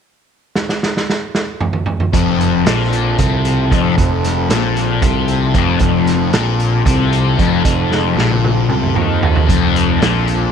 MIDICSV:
0, 0, Header, 1, 5, 480
1, 0, Start_track
1, 0, Tempo, 525394
1, 261, Time_signature, 7, 3, 24, 8
1, 9609, End_track
2, 0, Start_track
2, 0, Title_t, "Transistor combo organ"
2, 0, Program_c, 0, 18
2, 1943, Note_on_c, 0, 53, 65
2, 1945, Note_on_c, 0, 60, 56
2, 1951, Note_on_c, 0, 69, 65
2, 9609, Note_off_c, 0, 53, 0
2, 9609, Note_off_c, 0, 60, 0
2, 9609, Note_off_c, 0, 69, 0
2, 9609, End_track
3, 0, Start_track
3, 0, Title_t, "Distorted electric guitar"
3, 0, Program_c, 1, 30
3, 1947, Note_on_c, 1, 41, 100
3, 2419, Note_off_c, 1, 41, 0
3, 2430, Note_on_c, 1, 46, 95
3, 2900, Note_off_c, 1, 46, 0
3, 2914, Note_on_c, 1, 48, 99
3, 3383, Note_off_c, 1, 48, 0
3, 3386, Note_on_c, 1, 41, 94
3, 3615, Note_off_c, 1, 41, 0
3, 3626, Note_on_c, 1, 41, 103
3, 4099, Note_off_c, 1, 41, 0
3, 4111, Note_on_c, 1, 46, 102
3, 4581, Note_off_c, 1, 46, 0
3, 4592, Note_on_c, 1, 48, 99
3, 5062, Note_off_c, 1, 48, 0
3, 5065, Note_on_c, 1, 41, 95
3, 5294, Note_off_c, 1, 41, 0
3, 5305, Note_on_c, 1, 41, 102
3, 5778, Note_off_c, 1, 41, 0
3, 5779, Note_on_c, 1, 46, 100
3, 6255, Note_off_c, 1, 46, 0
3, 6259, Note_on_c, 1, 48, 103
3, 6735, Note_off_c, 1, 48, 0
3, 6741, Note_on_c, 1, 41, 98
3, 6967, Note_off_c, 1, 41, 0
3, 6978, Note_on_c, 1, 41, 102
3, 7454, Note_off_c, 1, 41, 0
3, 7467, Note_on_c, 1, 46, 98
3, 7939, Note_off_c, 1, 46, 0
3, 7946, Note_on_c, 1, 48, 96
3, 8178, Note_off_c, 1, 48, 0
3, 8187, Note_on_c, 1, 51, 95
3, 8653, Note_on_c, 1, 41, 104
3, 8659, Note_off_c, 1, 51, 0
3, 9132, Note_off_c, 1, 41, 0
3, 9132, Note_on_c, 1, 46, 92
3, 9605, Note_off_c, 1, 46, 0
3, 9609, End_track
4, 0, Start_track
4, 0, Title_t, "Picked electric bass"
4, 0, Program_c, 2, 34
4, 1951, Note_on_c, 2, 29, 85
4, 2395, Note_off_c, 2, 29, 0
4, 2427, Note_on_c, 2, 34, 87
4, 2873, Note_off_c, 2, 34, 0
4, 2917, Note_on_c, 2, 36, 85
4, 3358, Note_off_c, 2, 36, 0
4, 3394, Note_on_c, 2, 29, 87
4, 3613, Note_off_c, 2, 29, 0
4, 3638, Note_on_c, 2, 29, 84
4, 4079, Note_off_c, 2, 29, 0
4, 4104, Note_on_c, 2, 34, 90
4, 4551, Note_off_c, 2, 34, 0
4, 4589, Note_on_c, 2, 36, 93
4, 5034, Note_off_c, 2, 36, 0
4, 5070, Note_on_c, 2, 29, 93
4, 5291, Note_off_c, 2, 29, 0
4, 5306, Note_on_c, 2, 29, 94
4, 5752, Note_off_c, 2, 29, 0
4, 5776, Note_on_c, 2, 34, 86
4, 6227, Note_off_c, 2, 34, 0
4, 6263, Note_on_c, 2, 36, 93
4, 6711, Note_off_c, 2, 36, 0
4, 6750, Note_on_c, 2, 29, 83
4, 6971, Note_off_c, 2, 29, 0
4, 6988, Note_on_c, 2, 29, 84
4, 7433, Note_off_c, 2, 29, 0
4, 7450, Note_on_c, 2, 34, 82
4, 7903, Note_off_c, 2, 34, 0
4, 7938, Note_on_c, 2, 36, 92
4, 8164, Note_off_c, 2, 36, 0
4, 8184, Note_on_c, 2, 39, 85
4, 8631, Note_off_c, 2, 39, 0
4, 8669, Note_on_c, 2, 29, 88
4, 9113, Note_off_c, 2, 29, 0
4, 9158, Note_on_c, 2, 34, 94
4, 9598, Note_off_c, 2, 34, 0
4, 9609, End_track
5, 0, Start_track
5, 0, Title_t, "Drums"
5, 507, Note_on_c, 9, 38, 70
5, 598, Note_off_c, 9, 38, 0
5, 633, Note_on_c, 9, 38, 69
5, 725, Note_off_c, 9, 38, 0
5, 760, Note_on_c, 9, 38, 74
5, 852, Note_off_c, 9, 38, 0
5, 886, Note_on_c, 9, 38, 73
5, 977, Note_off_c, 9, 38, 0
5, 1001, Note_on_c, 9, 38, 76
5, 1093, Note_off_c, 9, 38, 0
5, 1231, Note_on_c, 9, 38, 80
5, 1322, Note_off_c, 9, 38, 0
5, 1466, Note_on_c, 9, 45, 93
5, 1557, Note_off_c, 9, 45, 0
5, 1581, Note_on_c, 9, 45, 93
5, 1672, Note_off_c, 9, 45, 0
5, 1698, Note_on_c, 9, 45, 94
5, 1790, Note_off_c, 9, 45, 0
5, 1827, Note_on_c, 9, 45, 93
5, 1918, Note_off_c, 9, 45, 0
5, 1950, Note_on_c, 9, 36, 97
5, 1954, Note_on_c, 9, 42, 89
5, 2042, Note_off_c, 9, 36, 0
5, 2045, Note_off_c, 9, 42, 0
5, 2198, Note_on_c, 9, 42, 69
5, 2289, Note_off_c, 9, 42, 0
5, 2433, Note_on_c, 9, 42, 93
5, 2438, Note_on_c, 9, 38, 107
5, 2525, Note_off_c, 9, 42, 0
5, 2529, Note_off_c, 9, 38, 0
5, 2674, Note_on_c, 9, 42, 67
5, 2765, Note_off_c, 9, 42, 0
5, 2909, Note_on_c, 9, 42, 94
5, 2913, Note_on_c, 9, 36, 99
5, 3000, Note_off_c, 9, 42, 0
5, 3004, Note_off_c, 9, 36, 0
5, 3152, Note_on_c, 9, 42, 68
5, 3243, Note_off_c, 9, 42, 0
5, 3394, Note_on_c, 9, 36, 100
5, 3400, Note_on_c, 9, 42, 69
5, 3485, Note_off_c, 9, 36, 0
5, 3491, Note_off_c, 9, 42, 0
5, 3634, Note_on_c, 9, 36, 95
5, 3637, Note_on_c, 9, 42, 90
5, 3725, Note_off_c, 9, 36, 0
5, 3728, Note_off_c, 9, 42, 0
5, 3878, Note_on_c, 9, 42, 68
5, 3882, Note_on_c, 9, 38, 35
5, 3969, Note_off_c, 9, 42, 0
5, 3974, Note_off_c, 9, 38, 0
5, 4113, Note_on_c, 9, 42, 86
5, 4118, Note_on_c, 9, 38, 98
5, 4204, Note_off_c, 9, 42, 0
5, 4209, Note_off_c, 9, 38, 0
5, 4352, Note_on_c, 9, 42, 61
5, 4357, Note_on_c, 9, 38, 31
5, 4444, Note_off_c, 9, 42, 0
5, 4448, Note_off_c, 9, 38, 0
5, 4588, Note_on_c, 9, 42, 88
5, 4589, Note_on_c, 9, 36, 108
5, 4679, Note_off_c, 9, 42, 0
5, 4680, Note_off_c, 9, 36, 0
5, 4824, Note_on_c, 9, 42, 59
5, 4915, Note_off_c, 9, 42, 0
5, 5065, Note_on_c, 9, 42, 61
5, 5066, Note_on_c, 9, 36, 96
5, 5156, Note_off_c, 9, 42, 0
5, 5158, Note_off_c, 9, 36, 0
5, 5294, Note_on_c, 9, 42, 78
5, 5305, Note_on_c, 9, 36, 99
5, 5386, Note_off_c, 9, 42, 0
5, 5396, Note_off_c, 9, 36, 0
5, 5547, Note_on_c, 9, 42, 64
5, 5552, Note_on_c, 9, 38, 37
5, 5639, Note_off_c, 9, 42, 0
5, 5643, Note_off_c, 9, 38, 0
5, 5784, Note_on_c, 9, 42, 77
5, 5789, Note_on_c, 9, 38, 100
5, 5876, Note_off_c, 9, 42, 0
5, 5880, Note_off_c, 9, 38, 0
5, 6027, Note_on_c, 9, 42, 62
5, 6118, Note_off_c, 9, 42, 0
5, 6267, Note_on_c, 9, 36, 109
5, 6270, Note_on_c, 9, 42, 94
5, 6358, Note_off_c, 9, 36, 0
5, 6362, Note_off_c, 9, 42, 0
5, 6510, Note_on_c, 9, 42, 69
5, 6601, Note_off_c, 9, 42, 0
5, 6749, Note_on_c, 9, 36, 94
5, 6754, Note_on_c, 9, 42, 72
5, 6840, Note_off_c, 9, 36, 0
5, 6845, Note_off_c, 9, 42, 0
5, 6988, Note_on_c, 9, 36, 100
5, 6988, Note_on_c, 9, 42, 91
5, 7079, Note_off_c, 9, 36, 0
5, 7080, Note_off_c, 9, 42, 0
5, 7233, Note_on_c, 9, 38, 58
5, 7324, Note_off_c, 9, 38, 0
5, 7477, Note_on_c, 9, 38, 60
5, 7568, Note_off_c, 9, 38, 0
5, 7590, Note_on_c, 9, 48, 54
5, 7681, Note_off_c, 9, 48, 0
5, 7712, Note_on_c, 9, 48, 66
5, 7804, Note_off_c, 9, 48, 0
5, 7942, Note_on_c, 9, 47, 76
5, 8033, Note_off_c, 9, 47, 0
5, 8068, Note_on_c, 9, 45, 72
5, 8159, Note_off_c, 9, 45, 0
5, 8186, Note_on_c, 9, 45, 90
5, 8277, Note_off_c, 9, 45, 0
5, 8431, Note_on_c, 9, 43, 94
5, 8522, Note_off_c, 9, 43, 0
5, 8547, Note_on_c, 9, 43, 82
5, 8639, Note_off_c, 9, 43, 0
5, 8670, Note_on_c, 9, 36, 98
5, 8675, Note_on_c, 9, 42, 84
5, 8761, Note_off_c, 9, 36, 0
5, 8766, Note_off_c, 9, 42, 0
5, 8918, Note_on_c, 9, 42, 66
5, 9009, Note_off_c, 9, 42, 0
5, 9155, Note_on_c, 9, 42, 79
5, 9159, Note_on_c, 9, 38, 104
5, 9246, Note_off_c, 9, 42, 0
5, 9250, Note_off_c, 9, 38, 0
5, 9389, Note_on_c, 9, 42, 61
5, 9480, Note_off_c, 9, 42, 0
5, 9609, End_track
0, 0, End_of_file